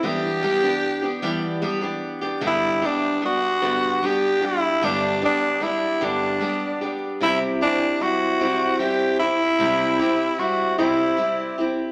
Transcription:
<<
  \new Staff \with { instrumentName = "Tenor saxophone" } { \time 6/8 \key g \major \tempo 4. = 50 g'2 r4 | e'8 d'8 fis'4 g'8 e'8 | d'8 d'8 e'8 d'4 r8 | e'8 d'8 fis'4 g'8 e'8~ |
e'4 fis'8 e'4 r8 | }
  \new Staff \with { instrumentName = "Steel-string acoustic guitar" } { \time 6/8 \key g \major <e g b d' g'>8 <g b d' g'>16 <b d' g'>8 <b d' g'>16 <e g b d' g'>8 <g b d' g'>16 <b d' g'>8 <b d' g'>16 | <g, d g b d' g'>8 <g b d' g'>8 <g b d'>8 <g, d g b d'>8 <g b d' g'>8 <g b d' g'>8 | <g, d g b d' g'>8 <g b d' g'>8 <g b d' g'>8 <g, d g b d' g'>8 <g b d' g'>8 <g b d' g'>8 | <c g c' e' g'>8 <c' e' g'>8 <g c' e'>8 <c g c' e'>8 <g c' e' g'>8 <c' e' g'>8 |
<c g c' e' g'>8 <c' e' g'>8 <g c' e'>8 <c g c' e' g'>8 <g c' e' g'>8 <c' e' g'>8 | }
>>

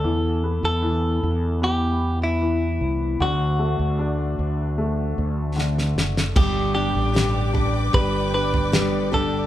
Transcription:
<<
  \new Staff \with { instrumentName = "String section" } { \time 4/4 \key g \major \tempo 4 = 76 r1 | r1 | <b' d'' g'' d'''>1 | }
  \new Staff \with { instrumentName = "Clean electric guitar" } { \time 4/4 \key g \major a'8. a'4~ a'16 g'8. e'4~ e'16 | fis'2.~ fis'8 r8 | g'8 g'4 r8 b'8 b'4 a'8 | }
  \new Staff \with { instrumentName = "Steel-string acoustic guitar" } { \time 4/4 \key g \major r1 | r1 | <g, d g b d' g'>8 <g b d' g'>8 <g, d g b d' g'>8 <g b d' g'>8 <g b d' g'>4 <g, d g b d' g'>8 <g b d' g'>8 | }
  \new Staff \with { instrumentName = "Upright piano" } { \clef bass \time 4/4 \key g \major e8 b8 e4 b4 e4 | d8 a8 d'4 a4 d4 | g8 d'8 g8 d'8 g8 d'8 g8 d'8 | }
  \new Staff \with { instrumentName = "Fretless electric bass" } { \clef bass \time 4/4 \key g \major e,8. e,8. e,2 c,8 | d,8. d,8. d,4 d,4 fis,,8 | g,,8. a,,4~ a,,16 g,,2 | }
  \new DrumStaff \with { instrumentName = "Drums" } \drummode { \time 4/4 r4 r4 r4 r4 | r4 r4 r4 sn16 sn16 sn16 sn16 | <cymc bd tomfh>4 sn8 tomfh8 bd8. tomfh16 sn8 tomfh8 | }
>>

